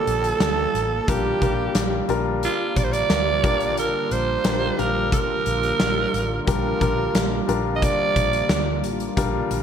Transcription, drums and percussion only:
0.07 closed hi-hat medium
0.24 closed hi-hat soft
0.40 snare loud
0.40 closed hi-hat medium
0.75 closed hi-hat medium
1.08 kick loud
1.08 closed hi-hat medium
1.42 kick medium
1.42 closed hi-hat medium
1.75 snare loud
1.75 closed hi-hat loud
2.09 closed hi-hat medium
2.43 closed hi-hat medium
2.76 kick medium
2.76 closed hi-hat medium
2.93 closed hi-hat soft
3.10 snare loud
3.10 closed hi-hat medium
3.44 kick medium
3.44 closed hi-hat medium
3.60 closed hi-hat soft
3.78 closed hi-hat medium
4.11 closed hi-hat medium
4.45 snare loud
4.45 closed hi-hat loud
4.79 closed hi-hat medium
5.12 kick medium
5.12 closed hi-hat medium
5.46 closed hi-hat medium
5.63 closed hi-hat soft
5.80 snare loud
5.80 closed hi-hat medium
6.14 closed hi-hat medium
6.47 kick loud
6.47 closed hi-hat medium
6.81 kick medium
6.81 closed hi-hat medium
7.15 snare loud
7.15 closed hi-hat loud
7.49 closed hi-hat medium
7.82 kick medium
7.82 closed hi-hat medium
8.16 kick medium
8.16 closed hi-hat medium
8.33 closed hi-hat medium
8.49 snare loud
8.49 closed hi-hat medium
8.84 closed hi-hat medium
9.00 closed hi-hat medium
9.17 kick medium
9.17 closed hi-hat medium
9.51 closed hi-hat medium

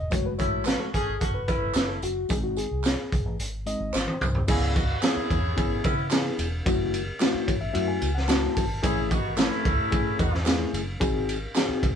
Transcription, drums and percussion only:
0.11 kick loud
0.11 closed hi-hat loud
0.11 tambourine medium
0.39 kick medium
0.39 closed hi-hat medium
0.39 tambourine medium
0.65 snare loud
0.65 clap loud
0.65 closed hi-hat medium
0.65 tambourine medium
0.94 kick medium
0.94 closed hi-hat medium
0.94 tambourine soft
1.21 kick medium
1.21 closed hi-hat medium
1.21 tambourine soft
1.48 kick loud
1.48 closed hi-hat medium
1.48 tambourine medium
1.74 snare loud
1.74 clap loud
1.74 closed hi-hat medium
1.74 tambourine loud
2.02 closed hi-hat medium
2.02 tambourine medium
2.29 kick loud
2.29 closed hi-hat loud
2.29 tambourine medium
2.56 closed hi-hat medium
2.56 tambourine medium
2.84 snare loud
2.84 clap medium
2.84 closed hi-hat loud
2.84 tambourine medium
3.12 kick medium
3.12 closed hi-hat medium
3.12 tambourine soft
3.39 closed hi-hat medium
3.39 tambourine soft
3.66 closed hi-hat medium
3.66 tambourine medium
3.94 snare medium
3.94 clap loud
3.94 tambourine loud
4.08 high tom medium
4.21 mid tom loud
4.21 tambourine medium
4.35 floor tom medium
4.48 kick loud
4.48 crash loud
4.48 tambourine medium
4.76 kick loud
4.76 ride medium
4.76 tambourine medium
5.03 snare loud
5.03 clap loud
5.03 ride medium
5.03 tambourine loud
5.31 kick medium
5.31 ride medium
5.31 tambourine soft
5.57 kick loud
5.57 ride medium
5.57 tambourine soft
5.84 kick loud
5.84 ride medium
5.84 tambourine medium
6.11 snare loud
6.11 clap loud
6.11 ride medium
6.11 tambourine loud
6.39 ride medium
6.39 tambourine medium
6.66 kick loud
6.66 ride medium
6.66 tambourine medium
6.94 ride medium
6.94 tambourine medium
7.20 snare loud
7.20 clap medium
7.20 ride medium
7.20 tambourine loud
7.48 kick loud
7.48 ride medium
7.48 tambourine soft
7.75 ride medium
7.75 tambourine soft
8.02 ride medium
8.02 tambourine medium
8.17 snare soft
8.29 snare loud
8.29 clap loud
8.29 ride medium
8.29 tambourine loud
8.56 kick medium
8.56 open hi-hat medium
8.56 ride medium
8.56 tambourine medium
8.83 kick loud
8.83 hi-hat pedal medium
8.83 ride medium
8.83 tambourine medium
9.11 kick loud
9.11 ride medium
9.11 tambourine medium
9.38 snare loud
9.38 clap loud
9.38 ride medium
9.38 tambourine loud
9.65 kick loud
9.65 ride medium
9.65 tambourine soft
9.92 kick loud
9.92 ride medium
9.92 tambourine soft
10.19 kick loud
10.19 ride medium
10.19 tambourine medium
10.34 snare soft
10.46 snare loud
10.46 clap loud
10.46 ride medium
10.46 tambourine loud
10.74 ride medium
10.74 tambourine medium
11.01 kick loud
11.01 ride medium
11.01 tambourine medium
11.29 ride medium
11.29 tambourine medium
11.56 snare loud
11.56 clap loud
11.56 ride medium
11.56 tambourine loud
11.83 kick medium
11.83 ride medium
11.83 tambourine soft

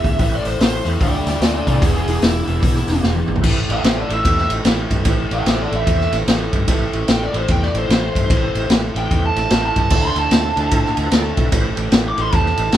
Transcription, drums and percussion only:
0.04 kick medium
0.04 open hi-hat medium
0.19 kick loud
0.19 open hi-hat medium
0.45 open hi-hat medium
0.61 snare loud
0.61 open hi-hat medium
0.86 open hi-hat medium
1.01 kick loud
1.01 open hi-hat medium
1.27 snare soft
1.27 open hi-hat medium
1.42 snare loud
1.42 open hi-hat medium
1.67 kick medium
1.67 open hi-hat medium
1.82 kick loud
1.82 open hi-hat medium
2.08 open hi-hat medium
2.22 snare loud
2.22 open hi-hat medium
2.47 open hi-hat soft
2.62 kick loud
2.62 open hi-hat medium
2.76 snare soft
2.88 snare soft
2.88 open hi-hat medium
3.04 snare medium
3.15 high tom medium
3.28 mid tom medium
3.36 floor tom medium
3.44 kick loud
3.44 crash loud
3.70 ride medium
3.84 snare loud
3.84 ride loud
4.10 ride medium
4.25 kick loud
4.25 ride loud
4.38 snare soft
4.50 ride medium
4.65 snare loud
4.65 ride loud
4.91 kick medium
4.91 ride medium
5.05 kick loud
5.05 ride loud
5.31 ride medium
5.46 snare loud
5.46 ride medium
5.72 ride medium
5.87 kick loud
5.87 ride medium
6.01 snare soft
6.13 snare soft
6.13 ride medium
6.28 snare loud
6.28 ride loud
6.53 kick medium
6.53 ride medium
6.68 kick loud
6.68 ride loud
6.93 ride medium
7.08 snare loud
7.08 ride medium
7.34 ride medium
7.48 kick loud
7.48 ride medium
7.62 snare soft
7.75 ride medium
7.90 snare loud
7.90 ride loud
8.15 kick medium
8.15 ride medium
8.30 kick loud
8.30 ride loud
8.55 ride medium
8.70 snare loud
8.70 ride medium
8.96 ride medium
9.11 kick loud
9.11 ride medium
9.36 snare soft
9.36 ride medium
9.50 snare loud
9.50 ride medium
9.76 kick medium
9.76 ride medium
9.90 kick loud
9.90 crash loud
10.16 ride medium
10.31 snare loud
10.31 ride loud
10.57 ride medium
10.71 kick loud
10.71 ride loud
10.86 snare soft
10.97 ride medium
11.11 snare loud
11.11 ride loud
11.37 kick medium
11.37 ride medium
11.52 kick loud
11.52 ride loud
11.77 ride medium
11.92 snare loud
11.92 ride loud
12.18 ride medium
12.32 kick loud
12.32 ride medium
12.46 snare soft
12.57 ride medium
12.72 snare loud
12.72 ride medium

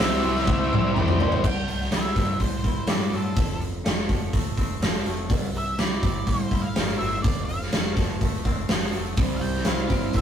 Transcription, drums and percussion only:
0.00 snare loud
0.36 snare soft
0.47 kick loud
0.47 high tom medium
0.73 mid tom medium
0.96 mid tom medium
1.08 mid tom medium
1.20 floor tom loud
1.32 floor tom loud
1.44 kick loud
1.44 crash loud
1.68 open hi-hat medium
1.81 snare soft
1.92 snare loud
1.92 open hi-hat medium
2.16 kick medium
2.16 snare soft
2.16 open hi-hat medium
2.40 kick medium
2.40 open hi-hat medium
2.64 kick medium
2.64 open hi-hat soft
2.87 snare loud
2.87 open hi-hat medium
3.13 open hi-hat medium
3.36 kick loud
3.36 open hi-hat medium
3.61 open hi-hat soft
3.86 snare loud
3.86 open hi-hat medium
4.09 kick medium
4.09 open hi-hat medium
4.33 kick medium
4.33 open hi-hat medium
4.58 kick medium
4.58 open hi-hat soft
4.82 snare loud
4.82 open hi-hat medium
5.06 open hi-hat medium
5.30 kick loud
5.30 open hi-hat medium
5.54 open hi-hat medium
5.79 snare medium
5.79 open hi-hat medium
6.03 kick medium
6.03 open hi-hat medium
6.27 kick medium
6.27 open hi-hat medium
6.51 kick medium
6.51 open hi-hat medium
6.76 snare loud
6.76 open hi-hat medium
7.00 open hi-hat medium
7.24 kick loud
7.24 open hi-hat medium
7.49 open hi-hat medium
7.62 snare soft
7.72 snare loud
7.72 open hi-hat medium
7.96 kick medium
7.96 snare soft
7.96 open hi-hat medium
8.21 kick medium
8.21 open hi-hat medium
8.45 kick medium
8.45 open hi-hat soft
8.69 snare loud
8.69 open hi-hat medium
8.92 open hi-hat medium
9.17 kick loud
9.17 open hi-hat medium
9.41 open hi-hat medium
9.54 snare soft
9.65 snare loud
9.65 open hi-hat medium
9.90 kick medium
9.90 open hi-hat medium
10.13 kick medium
10.13 open hi-hat medium

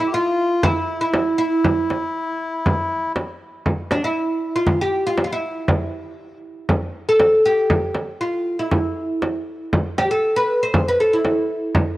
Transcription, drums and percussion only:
0.63 frame drum medium
1.14 frame drum medium
1.64 frame drum medium
1.90 frame drum medium
2.66 frame drum medium
3.16 frame drum medium
3.66 frame drum medium
3.91 frame drum medium
4.67 frame drum medium
5.18 frame drum medium
5.68 frame drum loud
6.69 frame drum medium
7.20 frame drum medium
7.70 frame drum medium
7.95 frame drum medium
8.71 frame drum medium
9.22 frame drum medium
9.73 frame drum medium
9.98 frame drum medium
10.74 frame drum loud
11.25 frame drum medium
11.75 frame drum loud

